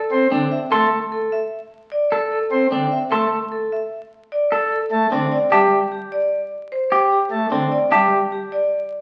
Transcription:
0.00 0.18 A4 medium
0.12 0.27 C4 medium
0.32 0.47 D3 medium
0.32 0.58 C4 medium
0.52 0.78 E5 medium
0.72 0.87 A3 medium
0.72 0.98 A4 medium
0.72 0.98 C6 medium
1.12 1.38 A4 medium
1.32 1.58 E5 medium
1.92 2.18 D5 medium
2.12 2.38 A4 medium
2.32 2.58 A4 soft
2.52 2.67 C4 medium
2.71 2.87 D3 medium
2.71 2.98 C4 soft
2.92 3.18 E5 medium
3.12 3.27 A3 medium
3.12 3.38 A4 medium
3.12 3.38 C6 medium
3.52 3.78 A4 soft
3.72 3.98 E5 medium
4.32 4.58 D5 medium
4.52 4.78 A4 soft
4.72 4.98 A4 soft
4.92 5.07 A3 medium
5.12 5.27 D3 medium
5.12 5.38 C4 medium
5.32 5.58 D5 medium
5.52 5.67 G3 medium
5.52 5.78 G4 medium
5.52 5.78 E5 medium
5.52 5.78 A5 medium
5.92 6.18 G4 medium
6.12 6.38 D5 medium
6.72 6.98 C5 medium
6.92 7.18 G4 medium
7.12 7.38 G4 soft
7.31 7.47 A3 medium
7.52 7.67 D3 medium
7.52 7.78 C4 medium
7.72 7.98 D5 medium
7.92 8.07 G3 medium
7.92 8.18 G4 medium
7.92 8.18 E5 medium
7.92 8.18 A5 medium
8.32 8.58 G4 medium
8.52 8.78 D5 medium

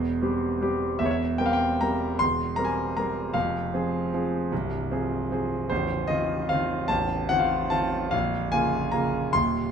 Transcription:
0.00 0.21 E1 soft
0.00 0.21 E2 medium
0.00 0.81 C5 medium
0.22 0.58 G3 soft
0.22 0.58 C4 soft
0.22 0.58 G4 soft
0.61 0.97 G3 soft
0.61 0.98 C4 soft
0.61 0.98 G4 soft
0.99 1.39 E1 soft
0.99 1.39 E2 medium
0.99 1.07 E5 medium
1.06 1.13 C#5 medium
1.11 1.39 E5 medium
1.38 1.77 G3 soft
1.38 1.77 C4 soft
1.38 1.78 A#4 soft
1.38 1.46 G5 medium
1.46 1.54 F5 medium
1.53 1.81 G5 medium
1.81 2.17 G3 soft
1.81 2.17 C4 soft
1.81 2.17 A#4 soft
1.81 2.20 A#5 medium
2.19 2.57 E1 soft
2.19 2.57 E2 soft
2.19 2.57 C6 medium
2.56 2.94 G3 soft
2.56 2.93 C4 soft
2.56 2.94 A#4 soft
2.56 2.67 A#5 medium
2.65 2.96 G#5 medium
2.97 3.32 G3 soft
2.97 3.32 C4 soft
2.97 3.32 A#4 soft
2.97 3.35 A#5 medium
3.34 3.72 F1 soft
3.34 3.72 F2 medium
3.34 5.51 F5 medium
3.74 4.09 F3 soft
3.74 4.09 C4 soft
3.74 4.10 G#4 soft
4.14 4.48 F3 soft
4.14 4.48 C4 soft
4.14 4.49 G#4 soft
4.52 4.90 C1 soft
4.52 4.90 C2 soft
4.91 5.28 F3 soft
4.91 5.28 C4 soft
4.91 5.28 G#4 soft
5.31 5.67 F3 soft
5.31 5.67 C4 soft
5.31 5.67 G#4 soft
5.70 6.08 A0 medium
5.70 6.08 A1 medium
5.70 6.08 C5 medium
6.07 6.46 D#3 soft
6.07 6.46 C4 soft
6.07 6.46 F4 soft
6.07 6.49 D#5 medium
6.49 6.86 D#3 soft
6.49 6.86 C4 soft
6.49 6.86 F4 soft
6.49 6.89 F5 medium
6.88 7.28 A0 medium
6.88 7.28 A1 medium
6.88 7.29 A5 medium
7.29 7.68 D#3 soft
7.29 7.68 C4 soft
7.29 7.68 F4 soft
7.29 7.40 F#5 medium
7.39 7.71 F5 medium
7.70 8.08 D#3 soft
7.70 8.08 C4 soft
7.70 8.09 F4 soft
7.70 8.12 A5 medium
8.11 8.51 A#0 soft
8.11 8.51 A#1 medium
8.11 8.51 F5 medium
8.52 8.89 C#3 soft
8.52 8.89 A#3 soft
8.52 8.90 F4 soft
8.52 8.93 G#5 medium
8.92 9.29 C#3 soft
8.92 9.29 A#3 soft
8.92 9.29 F4 soft
8.92 9.32 A#5 medium
9.33 9.71 D#1 soft
9.33 9.71 D#2 medium
9.33 9.71 C6 medium

